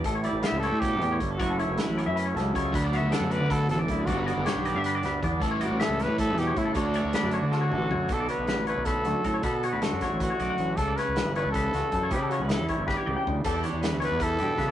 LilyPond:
<<
  \new Staff \with { instrumentName = "Clean electric guitar" } { \time 7/8 \key d \major \tempo 4 = 157 a'16 cis''16 d''8 e''8 cis''8 a'8 g'16 cis''8 a'16 | cis''16 a'16 cis''8 b'8 cis''16 e''16 b'16 cis''16 a'8 cis''8 | b'16 d''16 e''8 fis''8 d''8 b'8 a'16 d''8 b'16 | d''16 b'16 d''8 cis''8 d''16 e''16 b'16 d''16 b'8 d''8 |
a'16 cis''16 d''8 e''8 cis''8 b'8 a'16 cis''8 a'16 | cis''16 a'16 cis''8 b'8 cis''16 d''16 a'16 cis''16 a'8 cis''8 | a'16 d''16 cis''8 b'8 cis''8 b'8 fis'8 a'16 cis''16 | b'16 a'16 cis''16 b'16 a'8 cis''8 b'16 cis''16 d''16 fis''8 r16 |
a'16 d''16 cis''8 b'8 cis''8 b'8 fis'8 a'16 cis''16 | b'16 a'16 cis''16 b'16 a'8 cis''8 b'16 cis''16 d''16 g''8 r16 | a'16 d''16 cis''8 b'8 cis''8 b'8 g'8 b'16 r16 | }
  \new Staff \with { instrumentName = "Trumpet" } { \time 7/8 \key d \major r8 e'8 e'8 a'8 g'4 r8 | fis'8 e'8 e'2 r8 | r8 fis'8 a'8 b'8 a'8 a'8 e'8 | fis'8 fis'8 g'2 r8 |
r8 fis'8 a'8 b'8 a'8 g'8 e'8 | d'2 fis'4. | a'8 b'4 b'8 a'4. | a'8 fis'8 fis'4 fis'4. |
a'8 b'4 b'8 a'4. | g'8 fis'8 e'4 g'4. | a'8 r4 b'8 a'4. | }
  \new Staff \with { instrumentName = "Clean electric guitar" } { \time 7/8 \key d \major << { r8 g8 b16 cis'16 g'2 | <fis a cis' e'>8 a8 cis'8 cis'8 cis'4 g16 a16 | r8 b8 d'8 fis'2 | r8 b8 d'8 d'8 d'4 b8 |
r8 g8 cis'8 e'16 g'4.~ g'16 | r8 a8 b16 d'16 fis'8 d'4 a8 | <d a d' fis'>8 d'4 a2 | fis'8 b16 d'8. a2 |
cis'8 cis'4 g2 | cis'8 cis'4 g2 | g'8 d'4 g2 | } \\ { a,2 b,8 a,8 g,8 | fis,2~ fis,8 fis4 | d,2 d,8 e,8 fis,8 | g,2~ g,8 d4 |
a,2 a,8 b,8 cis8 | d,2~ d,8 d4 | b,4 d4. fis,4 | b,4 d4. fis,4 |
cis4 e4. cis4 | cis4 e4. cis4 | e,4 e4. b,4 | } >> }
  \new Staff \with { instrumentName = "Overdriven electric guitar" } { \clef bass \time 7/8 \key d \major r2. r8 | r2. r8 | <d fis a d'>2.~ <d fis a d'>8 | <g, d g b d'>2.~ <g, d g b d'>8 |
<a, e g cis' e'>2.~ <a, e g cis' e'>8 | <d a d' fis'>2.~ <d a d' fis'>8 | r2. r8 | r2. r8 |
r2. r8 | r2. r8 | r2. r8 | }
  \new Staff \with { instrumentName = "Fingered electric bass" } { \clef bass \time 7/8 \key d \major a,,8. a,,16 r16 cis,8 a,8. e,8 g,,8 | fis,,8. fis,,16 r16 a,,8 fis,8. cis,8 cis,8 | d,8. d,16 r16 fis,8 d8. a,,8 d,8 | g,,8. g,,16 r16 b,,8 g,8. d,8 e,8 |
a,,8. a,,16 r16 cis,8 a,8. e,8 a,8 | d,8. d,16 r16 fis,8 d8. a,,8 fis,8 | b,,8 r16 b,,8 a,,8 b,,8. d,16 r16 a,8 | b,8. d,8 fis,16 r16 a,,8 r16 b,,16 r16 a,,8 |
cis,8 r16 cis,8 g,,8 cis,8. cis,16 r16 fis,8 | cis8. cis,8 e,16 r16 g,,8 r16 cis,16 r16 d,8 | e,8 r16 e,8 d,8 e,8. g,16 r16 cis8 | }
  \new DrumStaff \with { instrumentName = "Drums" } \drummode { \time 7/8 <hh bd>8 hh8 <hh sn>8 hh8 <hh bd>8 hh8 <hh bd>8 | <hh bd>8 hh8 <hh sn>8 hh8 hh8 <hh sn>8 <hh bd>8 | <hh bd>8 hh8 <hh sn>8 hh8 <hh bd>8 <hh sn>8 <hh bd>8 | <hh bd>8 hh8 <hh sn>8 hh8 hh8 <hh sn>8 <hh bd>8 |
<hh bd>8 hh8 <hh sn>8 <hh sn>8 <hh bd>8 <hh sn>8 <hh bd>8 | <hh bd>8 hh8 <hh sn>8 hh8 sn8 toml8 tomfh8 | <hh bd>8 hh8 <hh sn>8 hh8 <hh bd>8 hh8 <hh bd>8 | <hh bd>8 hh8 <hh sn>8 <hh bd sn>8 <hh bd>8 hh8 hh8 |
<hh bd>8 <hh sn>8 <hh sn>8 hh8 <hh bd>8 <hh sn>8 <hh bd>8 | <hh bd>8 hh8 <hh sn>8 <hh bd>8 <bd sn>8 toml8 tomfh8 | <cymc hh bd>8 hh8 <hh sn>8 hh8 <hh bd>8 hh8 <hh bd sn>8 | }
>>